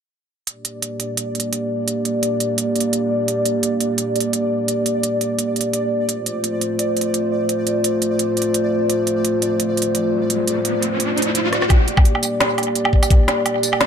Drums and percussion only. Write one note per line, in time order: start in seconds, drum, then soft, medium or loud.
0.47 closed hi-hat medium
0.65 closed hi-hat medium
0.82 closed hi-hat medium
1.00 closed hi-hat medium
1.17 closed hi-hat medium
1.35 closed hi-hat soft
1.40 closed hi-hat medium
1.53 closed hi-hat medium
1.88 closed hi-hat medium
2.05 closed hi-hat medium
2.23 closed hi-hat medium
2.40 closed hi-hat medium
2.58 closed hi-hat medium
2.76 closed hi-hat soft
2.80 closed hi-hat medium
2.93 closed hi-hat medium
3.28 closed hi-hat medium
3.45 closed hi-hat medium
3.63 closed hi-hat medium
3.81 closed hi-hat medium
3.98 closed hi-hat medium
4.16 closed hi-hat soft
4.20 closed hi-hat medium
4.33 closed hi-hat medium
4.68 closed hi-hat medium
4.86 closed hi-hat medium
5.03 closed hi-hat medium
5.21 closed hi-hat medium
5.39 closed hi-hat medium
5.56 closed hi-hat soft
5.61 closed hi-hat medium
5.73 closed hi-hat medium
6.09 closed hi-hat medium
6.26 closed hi-hat medium
6.44 closed hi-hat medium
6.61 closed hi-hat medium
6.79 closed hi-hat medium
6.97 closed hi-hat soft
7.01 closed hi-hat medium
7.14 closed hi-hat medium
7.49 closed hi-hat medium
7.67 closed hi-hat medium
7.84 closed hi-hat medium
8.02 closed hi-hat medium
8.19 closed hi-hat medium
8.37 closed hi-hat soft
8.42 closed hi-hat medium
8.54 closed hi-hat medium
8.90 closed hi-hat medium
9.07 closed hi-hat medium
9.25 closed hi-hat medium
9.42 closed hi-hat medium
9.60 closed hi-hat medium
9.77 closed hi-hat soft
9.82 closed hi-hat medium
9.95 closed hi-hat medium
10.30 closed hi-hat medium
10.48 closed hi-hat medium
10.65 closed hi-hat medium
10.82 closed hi-hat medium
11.00 closed hi-hat medium
11.18 closed hi-hat soft
11.22 closed hi-hat medium
11.35 closed hi-hat medium
11.53 cross-stick medium
11.53 closed hi-hat soft
11.62 cross-stick medium
11.70 kick loud
11.70 closed hi-hat medium
11.70 low woodblock medium
11.88 closed hi-hat medium
11.97 kick loud
11.97 low woodblock medium
12.05 closed hi-hat medium
12.15 low woodblock medium
12.23 closed hi-hat medium
12.23 tambourine medium
12.40 snare loud
12.40 closed hi-hat medium
12.40 low woodblock medium
12.58 closed hi-hat soft
12.58 low woodblock soft
12.63 closed hi-hat medium
12.75 closed hi-hat medium
12.85 low woodblock medium
12.93 kick medium
13.03 tambourine medium
13.03 low woodblock medium
13.10 kick loud
13.10 closed hi-hat medium
13.28 snare medium
13.28 closed hi-hat medium
13.28 low woodblock medium
13.46 closed hi-hat medium
13.46 low woodblock medium
13.63 closed hi-hat medium
13.63 tambourine medium
13.73 low woodblock medium
13.81 snare loud
13.81 closed hi-hat medium